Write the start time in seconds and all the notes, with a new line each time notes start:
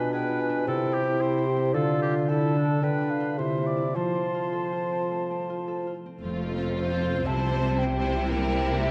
Already playing: B2 D4 F4 B4 G#5
0.13 G#4 B4 G5
0.31 F4
0.41 G#5
0.49 D4
0.66 C3 E4 A4 G5
0.85 C4
0.94 G4
1.02 E4
1.20 E4 G4 C5
1.38 E4
1.47 G4
1.56 C4
1.74 D3 F4 A4 F5
1.93 D4
2.02 G4
2.11 F4
2.28 E4 A4 A5
2.47 F4
2.56 D4
2.65 D4
2.82 D3 D4 B4 G5
3.01 D4
3.10 F5
3.20 D4 F4
3.38 C3 E4 C5 E5
3.57 A#3
3.67 D5
3.76 D4 E4
3.95 F3 F4 C5 A5
4.15 C4
4.34 F4
4.53 A4
4.72 F4
4.92 C4
5.11 A3
5.30 C4
5.50 F4
5.68 A4
5.87 F4
6.06 C4
6.23 F1 F2 F3 A3 C4 F4
6.42 C4
6.59 A4
6.75 F4 C5
6.94 A4
7.11 F4
7.26 C2 C3 G3 E4 C5 A5
7.45 C4
7.62 G4
7.78 C5 G5
7.97 G4
8.14 E4
8.30 C3 A#3 A#4 G5
8.48 A#3
8.65 E4
8.82 G4 A#4 E5